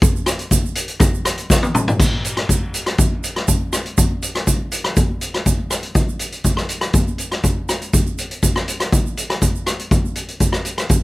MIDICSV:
0, 0, Header, 1, 2, 480
1, 0, Start_track
1, 0, Tempo, 494641
1, 21, Time_signature, 4, 2, 24, 8
1, 10704, End_track
2, 0, Start_track
2, 0, Title_t, "Drums"
2, 16, Note_on_c, 9, 42, 59
2, 19, Note_on_c, 9, 36, 120
2, 30, Note_on_c, 9, 82, 96
2, 113, Note_off_c, 9, 42, 0
2, 116, Note_off_c, 9, 36, 0
2, 127, Note_off_c, 9, 82, 0
2, 155, Note_on_c, 9, 82, 27
2, 252, Note_off_c, 9, 82, 0
2, 254, Note_on_c, 9, 37, 92
2, 254, Note_on_c, 9, 42, 86
2, 267, Note_on_c, 9, 82, 73
2, 351, Note_off_c, 9, 37, 0
2, 351, Note_off_c, 9, 42, 0
2, 364, Note_off_c, 9, 82, 0
2, 377, Note_on_c, 9, 42, 63
2, 395, Note_on_c, 9, 82, 27
2, 474, Note_off_c, 9, 42, 0
2, 492, Note_off_c, 9, 82, 0
2, 493, Note_on_c, 9, 42, 65
2, 496, Note_on_c, 9, 36, 87
2, 507, Note_on_c, 9, 82, 96
2, 590, Note_off_c, 9, 42, 0
2, 593, Note_off_c, 9, 36, 0
2, 604, Note_off_c, 9, 82, 0
2, 637, Note_on_c, 9, 82, 28
2, 731, Note_on_c, 9, 42, 95
2, 734, Note_off_c, 9, 82, 0
2, 746, Note_on_c, 9, 82, 73
2, 828, Note_off_c, 9, 42, 0
2, 843, Note_off_c, 9, 82, 0
2, 852, Note_on_c, 9, 42, 65
2, 870, Note_on_c, 9, 82, 30
2, 949, Note_off_c, 9, 42, 0
2, 967, Note_off_c, 9, 82, 0
2, 967, Note_on_c, 9, 37, 85
2, 967, Note_on_c, 9, 42, 66
2, 974, Note_on_c, 9, 36, 118
2, 981, Note_on_c, 9, 82, 100
2, 1064, Note_off_c, 9, 37, 0
2, 1064, Note_off_c, 9, 42, 0
2, 1071, Note_off_c, 9, 36, 0
2, 1078, Note_off_c, 9, 82, 0
2, 1110, Note_on_c, 9, 82, 27
2, 1207, Note_off_c, 9, 82, 0
2, 1215, Note_on_c, 9, 37, 91
2, 1215, Note_on_c, 9, 42, 91
2, 1226, Note_on_c, 9, 82, 77
2, 1312, Note_off_c, 9, 37, 0
2, 1312, Note_off_c, 9, 42, 0
2, 1323, Note_off_c, 9, 82, 0
2, 1334, Note_on_c, 9, 42, 65
2, 1351, Note_on_c, 9, 82, 28
2, 1432, Note_off_c, 9, 42, 0
2, 1448, Note_off_c, 9, 82, 0
2, 1455, Note_on_c, 9, 36, 95
2, 1455, Note_on_c, 9, 38, 64
2, 1466, Note_on_c, 9, 82, 98
2, 1552, Note_off_c, 9, 36, 0
2, 1552, Note_off_c, 9, 38, 0
2, 1563, Note_off_c, 9, 82, 0
2, 1579, Note_on_c, 9, 48, 66
2, 1588, Note_on_c, 9, 82, 28
2, 1676, Note_off_c, 9, 48, 0
2, 1685, Note_off_c, 9, 82, 0
2, 1694, Note_on_c, 9, 45, 93
2, 1706, Note_on_c, 9, 82, 73
2, 1791, Note_off_c, 9, 45, 0
2, 1803, Note_off_c, 9, 82, 0
2, 1822, Note_on_c, 9, 43, 93
2, 1836, Note_on_c, 9, 82, 27
2, 1919, Note_off_c, 9, 43, 0
2, 1933, Note_off_c, 9, 82, 0
2, 1937, Note_on_c, 9, 36, 101
2, 1937, Note_on_c, 9, 49, 91
2, 1952, Note_on_c, 9, 82, 91
2, 2034, Note_off_c, 9, 36, 0
2, 2034, Note_off_c, 9, 49, 0
2, 2049, Note_off_c, 9, 82, 0
2, 2180, Note_on_c, 9, 42, 82
2, 2189, Note_on_c, 9, 82, 71
2, 2277, Note_off_c, 9, 42, 0
2, 2286, Note_off_c, 9, 82, 0
2, 2299, Note_on_c, 9, 37, 82
2, 2299, Note_on_c, 9, 42, 58
2, 2396, Note_off_c, 9, 37, 0
2, 2396, Note_off_c, 9, 42, 0
2, 2418, Note_on_c, 9, 36, 76
2, 2418, Note_on_c, 9, 42, 60
2, 2431, Note_on_c, 9, 82, 90
2, 2515, Note_off_c, 9, 36, 0
2, 2515, Note_off_c, 9, 42, 0
2, 2528, Note_off_c, 9, 82, 0
2, 2657, Note_on_c, 9, 42, 82
2, 2666, Note_on_c, 9, 82, 71
2, 2754, Note_off_c, 9, 42, 0
2, 2763, Note_off_c, 9, 82, 0
2, 2778, Note_on_c, 9, 37, 73
2, 2778, Note_on_c, 9, 42, 59
2, 2875, Note_off_c, 9, 37, 0
2, 2875, Note_off_c, 9, 42, 0
2, 2892, Note_on_c, 9, 42, 57
2, 2897, Note_on_c, 9, 36, 107
2, 2908, Note_on_c, 9, 82, 97
2, 2989, Note_off_c, 9, 42, 0
2, 2994, Note_off_c, 9, 36, 0
2, 3005, Note_off_c, 9, 82, 0
2, 3141, Note_on_c, 9, 42, 79
2, 3145, Note_on_c, 9, 82, 75
2, 3238, Note_off_c, 9, 42, 0
2, 3242, Note_off_c, 9, 82, 0
2, 3262, Note_on_c, 9, 37, 77
2, 3262, Note_on_c, 9, 42, 52
2, 3359, Note_off_c, 9, 37, 0
2, 3359, Note_off_c, 9, 42, 0
2, 3377, Note_on_c, 9, 42, 56
2, 3379, Note_on_c, 9, 36, 84
2, 3381, Note_on_c, 9, 82, 93
2, 3474, Note_off_c, 9, 42, 0
2, 3476, Note_off_c, 9, 36, 0
2, 3478, Note_off_c, 9, 82, 0
2, 3616, Note_on_c, 9, 37, 81
2, 3616, Note_on_c, 9, 42, 74
2, 3622, Note_on_c, 9, 82, 76
2, 3713, Note_off_c, 9, 37, 0
2, 3713, Note_off_c, 9, 42, 0
2, 3719, Note_off_c, 9, 82, 0
2, 3742, Note_on_c, 9, 42, 58
2, 3839, Note_off_c, 9, 42, 0
2, 3860, Note_on_c, 9, 36, 102
2, 3862, Note_on_c, 9, 42, 56
2, 3863, Note_on_c, 9, 82, 97
2, 3957, Note_off_c, 9, 36, 0
2, 3959, Note_off_c, 9, 42, 0
2, 3960, Note_off_c, 9, 82, 0
2, 4099, Note_on_c, 9, 42, 76
2, 4105, Note_on_c, 9, 82, 73
2, 4196, Note_off_c, 9, 42, 0
2, 4202, Note_off_c, 9, 82, 0
2, 4223, Note_on_c, 9, 37, 77
2, 4223, Note_on_c, 9, 42, 58
2, 4320, Note_off_c, 9, 37, 0
2, 4320, Note_off_c, 9, 42, 0
2, 4339, Note_on_c, 9, 36, 74
2, 4340, Note_on_c, 9, 42, 58
2, 4346, Note_on_c, 9, 82, 87
2, 4436, Note_off_c, 9, 36, 0
2, 4437, Note_off_c, 9, 42, 0
2, 4443, Note_off_c, 9, 82, 0
2, 4576, Note_on_c, 9, 42, 83
2, 4586, Note_on_c, 9, 82, 71
2, 4673, Note_off_c, 9, 42, 0
2, 4683, Note_off_c, 9, 82, 0
2, 4700, Note_on_c, 9, 37, 81
2, 4700, Note_on_c, 9, 42, 58
2, 4797, Note_off_c, 9, 37, 0
2, 4797, Note_off_c, 9, 42, 0
2, 4820, Note_on_c, 9, 36, 100
2, 4820, Note_on_c, 9, 42, 60
2, 4820, Note_on_c, 9, 82, 87
2, 4917, Note_off_c, 9, 36, 0
2, 4917, Note_off_c, 9, 42, 0
2, 4917, Note_off_c, 9, 82, 0
2, 5056, Note_on_c, 9, 42, 80
2, 5064, Note_on_c, 9, 82, 67
2, 5153, Note_off_c, 9, 42, 0
2, 5161, Note_off_c, 9, 82, 0
2, 5184, Note_on_c, 9, 37, 72
2, 5184, Note_on_c, 9, 42, 57
2, 5281, Note_off_c, 9, 37, 0
2, 5281, Note_off_c, 9, 42, 0
2, 5297, Note_on_c, 9, 42, 61
2, 5299, Note_on_c, 9, 36, 77
2, 5306, Note_on_c, 9, 82, 84
2, 5394, Note_off_c, 9, 42, 0
2, 5396, Note_off_c, 9, 36, 0
2, 5403, Note_off_c, 9, 82, 0
2, 5535, Note_on_c, 9, 37, 72
2, 5535, Note_on_c, 9, 42, 78
2, 5544, Note_on_c, 9, 82, 72
2, 5632, Note_off_c, 9, 37, 0
2, 5632, Note_off_c, 9, 42, 0
2, 5641, Note_off_c, 9, 82, 0
2, 5654, Note_on_c, 9, 42, 54
2, 5751, Note_off_c, 9, 42, 0
2, 5770, Note_on_c, 9, 42, 50
2, 5775, Note_on_c, 9, 36, 94
2, 5783, Note_on_c, 9, 82, 80
2, 5867, Note_off_c, 9, 42, 0
2, 5872, Note_off_c, 9, 36, 0
2, 5880, Note_off_c, 9, 82, 0
2, 5908, Note_on_c, 9, 82, 23
2, 6005, Note_off_c, 9, 82, 0
2, 6009, Note_on_c, 9, 42, 72
2, 6024, Note_on_c, 9, 82, 67
2, 6106, Note_off_c, 9, 42, 0
2, 6121, Note_off_c, 9, 82, 0
2, 6136, Note_on_c, 9, 42, 51
2, 6145, Note_on_c, 9, 82, 26
2, 6233, Note_off_c, 9, 42, 0
2, 6242, Note_off_c, 9, 82, 0
2, 6248, Note_on_c, 9, 42, 52
2, 6255, Note_on_c, 9, 36, 75
2, 6265, Note_on_c, 9, 82, 85
2, 6345, Note_off_c, 9, 42, 0
2, 6352, Note_off_c, 9, 36, 0
2, 6362, Note_off_c, 9, 82, 0
2, 6373, Note_on_c, 9, 37, 72
2, 6387, Note_on_c, 9, 82, 24
2, 6470, Note_off_c, 9, 37, 0
2, 6484, Note_off_c, 9, 82, 0
2, 6489, Note_on_c, 9, 42, 75
2, 6505, Note_on_c, 9, 82, 65
2, 6586, Note_off_c, 9, 42, 0
2, 6602, Note_off_c, 9, 82, 0
2, 6609, Note_on_c, 9, 37, 79
2, 6609, Note_on_c, 9, 42, 52
2, 6627, Note_on_c, 9, 82, 25
2, 6706, Note_off_c, 9, 37, 0
2, 6706, Note_off_c, 9, 42, 0
2, 6724, Note_off_c, 9, 82, 0
2, 6727, Note_on_c, 9, 42, 57
2, 6733, Note_on_c, 9, 36, 107
2, 6743, Note_on_c, 9, 82, 83
2, 6824, Note_off_c, 9, 42, 0
2, 6830, Note_off_c, 9, 36, 0
2, 6840, Note_off_c, 9, 82, 0
2, 6867, Note_on_c, 9, 82, 25
2, 6964, Note_off_c, 9, 82, 0
2, 6968, Note_on_c, 9, 42, 68
2, 6984, Note_on_c, 9, 82, 63
2, 7065, Note_off_c, 9, 42, 0
2, 7081, Note_off_c, 9, 82, 0
2, 7099, Note_on_c, 9, 37, 74
2, 7099, Note_on_c, 9, 42, 54
2, 7196, Note_off_c, 9, 37, 0
2, 7196, Note_off_c, 9, 42, 0
2, 7215, Note_on_c, 9, 42, 51
2, 7217, Note_on_c, 9, 36, 79
2, 7224, Note_on_c, 9, 82, 82
2, 7312, Note_off_c, 9, 42, 0
2, 7314, Note_off_c, 9, 36, 0
2, 7321, Note_off_c, 9, 82, 0
2, 7461, Note_on_c, 9, 37, 77
2, 7461, Note_on_c, 9, 42, 74
2, 7465, Note_on_c, 9, 82, 72
2, 7558, Note_off_c, 9, 37, 0
2, 7558, Note_off_c, 9, 42, 0
2, 7562, Note_off_c, 9, 82, 0
2, 7584, Note_on_c, 9, 42, 56
2, 7590, Note_on_c, 9, 82, 26
2, 7681, Note_off_c, 9, 42, 0
2, 7687, Note_off_c, 9, 82, 0
2, 7700, Note_on_c, 9, 36, 97
2, 7702, Note_on_c, 9, 42, 55
2, 7703, Note_on_c, 9, 82, 86
2, 7797, Note_off_c, 9, 36, 0
2, 7799, Note_off_c, 9, 42, 0
2, 7800, Note_off_c, 9, 82, 0
2, 7827, Note_on_c, 9, 82, 27
2, 7924, Note_off_c, 9, 82, 0
2, 7943, Note_on_c, 9, 42, 78
2, 7944, Note_on_c, 9, 82, 65
2, 8040, Note_off_c, 9, 42, 0
2, 8041, Note_off_c, 9, 82, 0
2, 8063, Note_on_c, 9, 42, 58
2, 8073, Note_on_c, 9, 82, 23
2, 8160, Note_off_c, 9, 42, 0
2, 8170, Note_off_c, 9, 82, 0
2, 8178, Note_on_c, 9, 36, 77
2, 8180, Note_on_c, 9, 42, 62
2, 8186, Note_on_c, 9, 82, 86
2, 8275, Note_off_c, 9, 36, 0
2, 8277, Note_off_c, 9, 42, 0
2, 8283, Note_off_c, 9, 82, 0
2, 8303, Note_on_c, 9, 37, 78
2, 8312, Note_on_c, 9, 82, 25
2, 8400, Note_off_c, 9, 37, 0
2, 8409, Note_off_c, 9, 82, 0
2, 8421, Note_on_c, 9, 42, 87
2, 8432, Note_on_c, 9, 82, 62
2, 8518, Note_off_c, 9, 42, 0
2, 8530, Note_off_c, 9, 82, 0
2, 8540, Note_on_c, 9, 37, 73
2, 8540, Note_on_c, 9, 42, 60
2, 8554, Note_on_c, 9, 82, 22
2, 8637, Note_off_c, 9, 37, 0
2, 8637, Note_off_c, 9, 42, 0
2, 8651, Note_off_c, 9, 82, 0
2, 8661, Note_on_c, 9, 36, 97
2, 8661, Note_on_c, 9, 42, 64
2, 8668, Note_on_c, 9, 82, 80
2, 8758, Note_off_c, 9, 36, 0
2, 8758, Note_off_c, 9, 42, 0
2, 8766, Note_off_c, 9, 82, 0
2, 8796, Note_on_c, 9, 82, 23
2, 8893, Note_off_c, 9, 82, 0
2, 8901, Note_on_c, 9, 42, 80
2, 8911, Note_on_c, 9, 82, 60
2, 8999, Note_off_c, 9, 42, 0
2, 9008, Note_off_c, 9, 82, 0
2, 9024, Note_on_c, 9, 37, 77
2, 9024, Note_on_c, 9, 42, 57
2, 9121, Note_off_c, 9, 37, 0
2, 9121, Note_off_c, 9, 42, 0
2, 9139, Note_on_c, 9, 42, 61
2, 9140, Note_on_c, 9, 36, 77
2, 9145, Note_on_c, 9, 82, 79
2, 9236, Note_off_c, 9, 42, 0
2, 9237, Note_off_c, 9, 36, 0
2, 9242, Note_off_c, 9, 82, 0
2, 9273, Note_on_c, 9, 82, 22
2, 9370, Note_off_c, 9, 82, 0
2, 9378, Note_on_c, 9, 37, 76
2, 9378, Note_on_c, 9, 42, 75
2, 9389, Note_on_c, 9, 82, 59
2, 9475, Note_off_c, 9, 37, 0
2, 9475, Note_off_c, 9, 42, 0
2, 9486, Note_off_c, 9, 82, 0
2, 9504, Note_on_c, 9, 42, 56
2, 9513, Note_on_c, 9, 82, 21
2, 9601, Note_off_c, 9, 42, 0
2, 9610, Note_off_c, 9, 82, 0
2, 9619, Note_on_c, 9, 36, 102
2, 9619, Note_on_c, 9, 42, 57
2, 9630, Note_on_c, 9, 82, 70
2, 9716, Note_off_c, 9, 36, 0
2, 9717, Note_off_c, 9, 42, 0
2, 9727, Note_off_c, 9, 82, 0
2, 9755, Note_on_c, 9, 82, 21
2, 9852, Note_off_c, 9, 82, 0
2, 9854, Note_on_c, 9, 42, 75
2, 9867, Note_on_c, 9, 82, 55
2, 9951, Note_off_c, 9, 42, 0
2, 9964, Note_off_c, 9, 82, 0
2, 9980, Note_on_c, 9, 42, 55
2, 9995, Note_on_c, 9, 82, 20
2, 10077, Note_off_c, 9, 42, 0
2, 10092, Note_off_c, 9, 82, 0
2, 10092, Note_on_c, 9, 42, 53
2, 10096, Note_on_c, 9, 36, 80
2, 10105, Note_on_c, 9, 82, 75
2, 10189, Note_off_c, 9, 42, 0
2, 10193, Note_off_c, 9, 36, 0
2, 10202, Note_off_c, 9, 82, 0
2, 10213, Note_on_c, 9, 37, 81
2, 10229, Note_on_c, 9, 82, 23
2, 10310, Note_off_c, 9, 37, 0
2, 10326, Note_off_c, 9, 82, 0
2, 10332, Note_on_c, 9, 42, 76
2, 10345, Note_on_c, 9, 82, 60
2, 10429, Note_off_c, 9, 42, 0
2, 10442, Note_off_c, 9, 82, 0
2, 10459, Note_on_c, 9, 37, 75
2, 10459, Note_on_c, 9, 42, 55
2, 10475, Note_on_c, 9, 82, 23
2, 10556, Note_off_c, 9, 37, 0
2, 10556, Note_off_c, 9, 42, 0
2, 10569, Note_on_c, 9, 42, 54
2, 10572, Note_off_c, 9, 82, 0
2, 10576, Note_on_c, 9, 36, 100
2, 10586, Note_on_c, 9, 82, 78
2, 10666, Note_off_c, 9, 42, 0
2, 10673, Note_off_c, 9, 36, 0
2, 10683, Note_off_c, 9, 82, 0
2, 10704, End_track
0, 0, End_of_file